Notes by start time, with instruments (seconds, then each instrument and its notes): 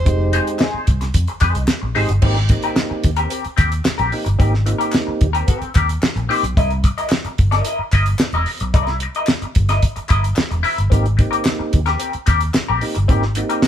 Already playing: alto saxophone C5
0.05 fingered electric bass F1, tonewheel organ G#3 C4 D#4 G4, kick, closed hi-hat
0.33 clean electric guitar D#4 G#4 C5, closed hi-hat
0.47 closed hi-hat
0.59 clean electric guitar D#4 G#4 C5, snare, clap
0.74 muted fingered electric bass stroke
0.87 fingered electric bass C2, muted clean electric guitar stroke, kick, closed hi-hat
1.01 muted clean electric guitar stroke, snare, closed hi-hat
1.14 fingered electric bass F2, kick, closed hi-hat
1.28 muted clean electric guitar stroke, closed hi-hat
1.41 fingered electric bass F2, clean electric guitar D#4 G#4 C5, kick, clap, closed hi-hat
1.55 fingered electric bass C2, muted clean electric guitar stroke, closed hi-hat
1.68 muted clean electric guitar stroke, snare, clap
1.82 fingered electric bass A#1, muted clean electric guitar stroke
1.95 fingered electric bass G#1, tonewheel organ G#3 C4 D#4 G4, clean electric guitar D#4 G#4 C5, open hi-hat
2.09 fingered electric bass G1, muted clean electric guitar stroke, closed hi-hat
2.22 fingered electric bass G#1, tonewheel organ A#3 C4 D#4 G4, clean electric guitar C4 G4 A#4, kick, crash
2.36 muted clean electric guitar stroke, snare
2.49 tonewheel organ A#3 C4 D#4 G4, muted clean electric guitar stroke, kick, closed hi-hat
2.63 clean electric guitar C4 G4 A#4, closed hi-hat
2.76 muted clean electric guitar stroke, snare, clap
2.90 muted clean electric guitar stroke, muted fingered electric bass stroke
3.04 fingered electric bass D#2, kick, closed hi-hat
3.16 clean electric guitar C4 G4 A#4, closed hi-hat
3.29 clean electric guitar C4 G4 A#4, closed hi-hat
3.44 muted clean electric guitar stroke, muted fingered electric bass stroke, closed hi-hat
3.57 fingered electric bass D#2, clean electric guitar C4 G4 A#4, kick, clap, closed hi-hat
3.70 muted clean electric guitar stroke, closed hi-hat
3.85 muted clean electric guitar stroke, muted fingered electric bass stroke, snare, clap
3.98 fingered electric bass A#1, clean electric guitar C4 G4 A#4, closed hi-hat
4.12 tonewheel organ A#3 C4 D#4 G4, muted clean electric guitar stroke, open hi-hat
4.25 fingered electric bass G1, muted clean electric guitar stroke, closed hi-hat
4.38 fingered electric bass G#1, tonewheel organ A#3 C4 D#4 G4, clean electric guitar C4 G4 A#4, kick, closed hi-hat
4.52 muted clean electric guitar stroke, snare
4.66 tonewheel organ A#3 C4 D#4 F4, muted clean electric guitar stroke, closed hi-hat
4.73 tonewheel organ G4
4.78 clean electric guitar C4 G4 A#4, closed hi-hat
4.92 muted clean electric guitar stroke, snare, clap
5.07 muted clean electric guitar stroke, muted fingered electric bass stroke
5.21 fingered electric bass D#2, kick, closed hi-hat
5.33 clean electric guitar C4 G4 A#4, closed hi-hat
5.47 clean electric guitar C4 G4 A#4, kick, closed hi-hat
5.61 muted clean electric guitar stroke, muted fingered electric bass stroke, closed hi-hat
5.75 fingered electric bass D#2, clean electric guitar C4 G4 A#4, kick, clap, closed hi-hat
5.89 muted clean electric guitar stroke, closed hi-hat
6.03 muted fingered electric bass stroke, muted clean electric guitar stroke, snare, clap
6.16 fingered electric bass A#1, muted clean electric guitar stroke, closed hi-hat
6.29 tonewheel organ A#3 C4 D#4 G4, clean electric guitar C4 G4 C5, open hi-hat
6.43 fingered electric bass B1, muted clean electric guitar stroke, closed hi-hat
6.57 fingered electric bass C2, clean electric guitar E4 A#4 D#5, kick, closed hi-hat
6.70 muted clean electric guitar stroke, closed hi-hat
6.84 muted clean electric guitar stroke, kick, closed hi-hat
6.98 clean electric guitar E4 A#4 D#5, closed hi-hat
7.10 muted clean electric guitar stroke, snare, clap
7.24 muted clean electric guitar stroke, muted fingered electric bass stroke, closed hi-hat
7.38 fingered electric bass G1, kick, closed hi-hat
7.51 clean electric guitar E4 A#4 D#5, snare, closed hi-hat
7.65 clean electric guitar E4 A#4 D#5, closed hi-hat
7.79 muted fingered electric bass stroke, muted clean electric guitar stroke
7.92 fingered electric bass G1, clean electric guitar E4 A#4 D#5, kick, clap, closed hi-hat
8.06 muted clean electric guitar stroke, closed hi-hat
8.19 muted fingered electric bass stroke, muted clean electric guitar stroke, snare, clap
8.32 fingered electric bass E1, clean electric guitar E4 A#4 D#5, closed hi-hat
8.46 muted clean electric guitar stroke, open hi-hat
8.60 fingered electric bass B1, muted clean electric guitar stroke, closed hi-hat
8.74 fingered electric bass C2, clean electric guitar E4 A#4 D#5, kick, closed hi-hat
8.87 muted clean electric guitar stroke, snare, closed hi-hat
9.00 muted clean electric guitar stroke, closed hi-hat
9.15 clean electric guitar E4 A#4 D#5, closed hi-hat
9.27 muted clean electric guitar stroke, snare, clap
9.42 muted clean electric guitar stroke, muted fingered electric bass stroke, closed hi-hat
9.55 fingered electric bass G1, kick, closed hi-hat
9.69 clean electric guitar E4 A#4 D#5, snare, closed hi-hat
9.82 muted clean electric guitar stroke, kick, closed hi-hat
9.96 muted clean electric guitar stroke, muted fingered electric bass stroke, closed hi-hat
10.09 fingered electric bass G1, clean electric guitar E4 A#4 D#5, kick, clap, closed hi-hat
10.23 muted clean electric guitar stroke, closed hi-hat
10.36 muted clean electric guitar stroke, muted fingered electric bass stroke, snare, clap
10.51 fingered electric bass E1, muted clean electric guitar stroke, closed hi-hat
10.63 clean electric guitar E4 A#4 E5, open hi-hat
10.77 fingered electric bass G1, muted clean electric guitar stroke, closed hi-hat
10.90 fingered electric bass G#1, tonewheel organ A#3 C4 D#4 G4, clean electric guitar C4 G4 A#4, kick, closed hi-hat
11.04 muted clean electric guitar stroke, closed hi-hat
11.17 tonewheel organ A#3 C4 D#4 G4, muted clean electric guitar stroke, kick, closed hi-hat
11.31 clean electric guitar C4 G4 A#4, closed hi-hat
11.45 muted clean electric guitar stroke, snare, clap
11.59 muted clean electric guitar stroke, muted fingered electric bass stroke
11.73 fingered electric bass D#2, kick, closed hi-hat
11.86 clean electric guitar C4 G4 A#4, snare, closed hi-hat
11.99 clean electric guitar C4 G4 A#4, closed hi-hat
12.13 muted clean electric guitar stroke, muted fingered electric bass stroke, closed hi-hat
12.26 fingered electric bass D#2, clean electric guitar C4 G4 A#4, kick, clap, closed hi-hat
12.41 muted clean electric guitar stroke, closed hi-hat
12.54 muted clean electric guitar stroke, muted fingered electric bass stroke, snare, clap
12.68 fingered electric bass A#1, clean electric guitar C4 G4 A#4
12.81 tonewheel organ A#3 C4 D#4 G4, muted clean electric guitar stroke, open hi-hat
12.95 fingered electric bass G1, muted clean electric guitar stroke, closed hi-hat
13.08 fingered electric bass G#1, tonewheel organ A#3 C4 D#4 G4, clean electric guitar C4 G4 A#4, kick, closed hi-hat
13.22 muted clean electric guitar stroke, snare
13.35 tonewheel organ A#3 C4 D#4 F#4, muted clean electric guitar stroke, closed hi-hat
13.44 tonewheel organ G4
13.49 clean electric guitar C4 G4 A#4, closed hi-hat
13.62 muted clean electric guitar stroke, snare, clap